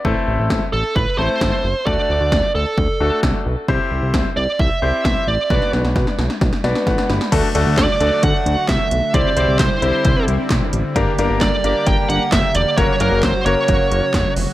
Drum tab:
CC |----------------|----------------|----------------|----------------|
HH |----------------|----------------|----------------|----------------|
CP |----------------|----------------|----------------|----------------|
SD |----o-------o---|----o-------o---|----o-------o---|oooooooooooooooo|
BD |o---o---o---o---|o---o---o---o---|o---o---o---o---|o---o---o---o---|

CC |x---------------|----------------|----------------|----------------|
HH |x-x-x-x-x-x-x-x-|x-x-x-x-x-x-x-x-|x-x-x-x-x-x-x-x-|x-x-x-x-x-x-x-o-|
CP |----x-------x---|----x-------x---|----x-------x---|----x-------x---|
SD |----o-------o---|----o-------o---|----o-------o---|----o-------o---|
BD |o---o---o---o---|o---o---o---o---|o---o---o---o---|o---o---o---o---|